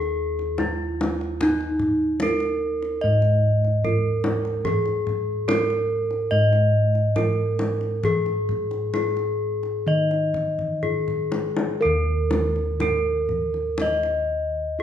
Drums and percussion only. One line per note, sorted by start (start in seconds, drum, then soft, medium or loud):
0.39 kendang slap soft
0.58 kendang high medium
0.58 kendang low medium
1.01 kendang high medium
1.21 kendang slap soft
1.41 kendang low medium
1.61 kendang slap soft
1.79 kendang low medium
2.20 kendang high medium
2.40 kendang slap soft
2.82 kendang slap soft
3.22 kendang slap soft
3.65 kendang slap soft
3.84 kendang low medium
4.24 kendang high medium
4.45 kendang slap soft
4.65 kendang low medium
4.86 kendang slap soft
5.07 kendang low medium
5.49 kendang high medium
5.70 kendang slap soft
6.11 kendang slap soft
6.53 kendang slap soft
6.95 kendang slap soft
7.16 kendang high soft
7.16 kendang low medium
7.59 kendang high medium
7.81 kendang slap soft
8.03 kendang low medium
8.26 kendang slap soft
8.49 kendang low medium
8.71 kendang slap soft
8.94 kendang high soft
9.17 kendang slap soft
9.63 kendang slap soft
10.11 kendang slap soft
10.34 kendang low soft
10.59 kendang low soft
10.83 kendang low soft
11.08 kendang low soft
11.32 kendang high medium
11.57 kendang high medium
12.31 kendang high medium
12.56 kendang slap soft
12.80 kendang high medium
12.80 kendang low medium
13.29 kendang low soft
13.54 kendang slap soft
13.78 kendang high medium
13.78 kendang low medium
14.03 kendang slap soft